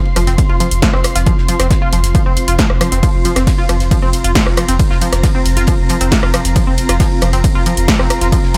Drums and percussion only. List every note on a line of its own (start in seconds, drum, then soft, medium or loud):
0.05 ride soft
0.16 cross-stick medium
0.16 open hi-hat loud
0.16 ride medium
0.27 snare soft
0.27 open hi-hat medium
0.38 kick loud
0.38 closed hi-hat medium
0.38 ride medium
0.49 ride soft
0.60 open hi-hat loud
0.60 ride medium
0.71 closed hi-hat medium
0.82 kick loud
0.82 snare loud
0.82 closed hi-hat medium
0.82 ride medium
0.93 cross-stick medium
0.93 snare soft
1.04 cross-stick medium
1.04 open hi-hat loud
1.04 ride medium
1.15 snare soft
1.15 closed hi-hat medium
1.26 kick loud
1.26 closed hi-hat medium
1.26 ride medium
1.38 snare medium
1.48 open hi-hat loud
1.48 ride medium
1.59 cross-stick medium
1.59 snare medium
1.59 closed hi-hat medium
1.70 kick loud
1.70 snare loud
1.70 closed hi-hat medium
1.70 ride medium
1.93 open hi-hat loud
1.93 ride medium
2.04 snare soft
2.04 closed hi-hat medium
2.15 kick loud
2.15 closed hi-hat medium
2.15 ride medium
2.37 open hi-hat loud
2.37 ride medium
2.48 closed hi-hat medium
2.58 kick loud
2.58 snare loud
2.58 closed hi-hat medium
2.58 ride medium
2.70 cross-stick medium
2.81 cross-stick loud
2.81 open hi-hat loud
2.81 ride medium
2.92 snare soft
2.92 closed hi-hat medium
3.03 kick loud
3.03 closed hi-hat medium
3.03 ride medium
3.25 open hi-hat loud
3.25 ride medium
3.36 cross-stick medium
3.36 snare soft
3.36 closed hi-hat medium
3.47 kick loud
3.47 snare loud
3.47 closed hi-hat medium
3.47 ride medium
3.58 ride soft
3.69 cross-stick medium
3.69 open hi-hat loud
3.69 ride medium
3.80 snare soft
3.80 open hi-hat medium
3.91 kick loud
3.91 closed hi-hat medium
3.91 ride medium
3.91 ride loud
4.02 ride soft
4.13 open hi-hat loud
4.13 ride medium
4.24 closed hi-hat medium
4.35 kick loud
4.35 snare loud
4.35 closed hi-hat medium
4.35 ride medium
4.46 cross-stick medium
4.46 snare soft
4.57 cross-stick loud
4.57 open hi-hat loud
4.57 ride medium
4.68 snare medium
4.68 closed hi-hat medium
4.79 kick loud
4.79 closed hi-hat medium
4.79 ride medium
4.91 snare medium
5.01 open hi-hat loud
5.01 ride medium
5.12 cross-stick medium
5.12 snare medium
5.12 closed hi-hat medium
5.23 kick loud
5.23 snare loud
5.23 closed hi-hat medium
5.23 ride medium
5.46 open hi-hat loud
5.46 ride medium
5.57 snare soft
5.57 closed hi-hat medium
5.67 kick loud
5.67 closed hi-hat medium
5.67 ride medium
5.89 open hi-hat loud
5.89 ride medium
6.01 closed hi-hat medium
6.11 kick loud
6.11 snare loud
6.11 closed hi-hat medium
6.11 ride medium
6.23 cross-stick medium
6.34 cross-stick loud
6.34 open hi-hat loud
6.34 ride medium
6.45 snare soft
6.45 closed hi-hat medium
6.56 kick loud
6.56 closed hi-hat medium
6.56 ride medium
6.78 open hi-hat loud
6.78 ride medium
6.89 cross-stick medium
6.89 snare soft
6.89 closed hi-hat medium
7.00 kick loud
7.00 snare loud
7.00 closed hi-hat medium
7.00 ride medium
7.12 ride soft
7.21 cross-stick medium
7.21 open hi-hat loud
7.21 ride medium
7.32 snare soft
7.32 open hi-hat medium
7.44 kick loud
7.44 closed hi-hat medium
7.44 ride medium
7.55 ride soft
7.66 open hi-hat loud
7.66 ride medium
7.77 closed hi-hat medium
7.88 kick loud
7.88 snare loud
7.88 closed hi-hat medium
7.88 ride medium
7.99 cross-stick medium
7.99 snare medium
8.10 cross-stick loud
8.10 open hi-hat loud
8.10 ride medium
8.21 snare medium
8.21 closed hi-hat medium
8.32 kick loud
8.32 closed hi-hat medium
8.32 ride loud
8.32 ride medium
8.43 snare medium
8.54 snare loud
8.54 open hi-hat loud